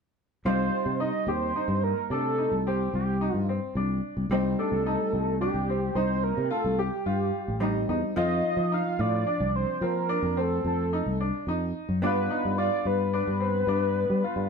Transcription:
0.45 fretless electric bass C2, hollow-body jazz guitar G3 C4 D#4, grand piano F4, analog synth lead C5
0.86 fretless electric bass C3
1.00 grand piano D#4, analog synth lead D#5
1.27 fretless electric bass D#2, grand piano G4, analog synth lead C5
1.56 grand piano D#4
1.68 fretless electric bass G2
1.84 analog synth lead A#4
2.10 fretless electric bass C3, grand piano D4, analog synth lead A4
2.38 grand piano D#4
2.52 fretless electric bass C2
2.67 grand piano C4, analog synth lead G4
2.94 fretless electric bass C2, analog synth lead G4
3.21 grand piano D#4
3.34 fretless electric bass G2
3.49 grand piano C4
3.75 fretless electric bass C2, grand piano D4
4.17 fretless electric bass C2
4.30 fretless electric bass C2, hollow-body jazz guitar G3 C4 D#4, grand piano C4
4.59 grand piano D4, analog synth lead A4
4.72 fretless electric bass C2
4.86 grand piano D#4
5.13 fretless electric bass C2
5.41 grand piano D4, analog synth lead G4
5.54 fretless electric bass C2
5.69 grand piano C4
5.95 fretless electric bass C2, grand piano D#4, analog synth lead C5
6.24 analog synth lead A#4
6.37 fretless electric bass C3
6.50 grand piano F4, analog synth lead A4
6.64 fretless electric bass C2
6.79 grand piano G4, analog synth lead G4
7.06 fretless electric bass G2, grand piano F4
7.48 fretless electric bass A1
7.60 hollow-body jazz guitar G3 C4 D#4, grand piano D#4
7.89 fretless electric bass E2, grand piano D#4
8.16 fretless electric bass F2, hollow-body jazz guitar F3 C4 F4, grand piano F4, analog synth lead D#5
8.57 fretless electric bass F3
8.72 grand piano D#4, analog synth lead F5
8.99 fretless electric bass A2, grand piano F4, analog synth lead D5
9.27 grand piano D4
9.40 fretless electric bass C2
9.56 analog synth lead C5
9.81 fretless electric bass F3, grand piano C4, analog synth lead A#4
10.09 grand piano D4
10.23 fretless electric bass F2
10.37 grand piano C4, analog synth lead A4
10.65 fretless electric bass F2, analog synth lead A4
10.93 grand piano D#4
11.06 fretless electric bass C2
11.20 grand piano D4
11.47 fretless electric bass F2, grand piano D#4
11.89 fretless electric bass F#2
12.02 fretless electric bass G2, hollow-body jazz guitar B3 D4 F4, grand piano D4, analog synth lead B4
12.30 grand piano D#4
12.45 fretless electric bass G2
12.58 grand piano F4, analog synth lead D5
12.85 fretless electric bass G2, analog synth lead B4
13.13 grand piano D4, analog synth lead B4
13.27 fretless electric bass G2
13.40 grand piano C4
13.67 fretless electric bass G2, grand piano D4
14.10 fretless electric bass G3
14.24 grand piano F4
14.36 fretless electric bass G2

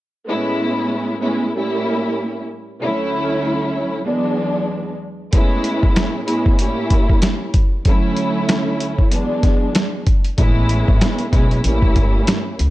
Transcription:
0.27 string section A2 G#3 B3 C#4 E4
1.20 string section A2 G#3 B3 C#4 E4
1.55 string section A2 G3 A#3 C#4 E4
2.80 string section D2 F#3 A3 C#4 E4
4.04 string section E2 F#3 G#3 B3 D4
5.32 string section A2 G#3 B3 C#4 E4, kick, closed hi-hat
5.64 closed hi-hat
5.83 kick
5.96 snare, closed hi-hat
6.25 string section A2 G#3 B3 C#4 E4, closed hi-hat
6.46 kick
6.59 string section A2 G3 A#3 C#4 E4, closed hi-hat
6.90 kick, closed hi-hat
7.10 kick
7.22 snare, closed hi-hat
7.54 kick, closed hi-hat
7.85 string section D2 F#3 A3 C#4 E4, kick, closed hi-hat
8.17 closed hi-hat
8.49 snare, closed hi-hat
8.80 closed hi-hat
8.99 kick
9.09 string section E2 F#3 G#3 B3 D4, closed hi-hat
9.43 kick, snare, closed hi-hat
9.75 snare, closed hi-hat
10.07 kick, closed hi-hat
10.24 closed hi-hat
10.37 upright bass A1, string section A2 G#3 B3 C#4 E4, kick, closed hi-hat
10.69 closed hi-hat
10.88 upright bass G#1, kick
11.01 snare, closed hi-hat
11.19 closed hi-hat
11.30 upright bass B1, string section A2 G#3 B3 C#4 E4, kick, closed hi-hat
11.51 closed hi-hat
11.64 upright bass A1, string section A2 G3 A#3 C#4 E4, closed hi-hat
11.82 kick
11.96 upright bass G1, kick, closed hi-hat
12.27 snare, closed hi-hat
12.59 upright bass C#2, closed hi-hat

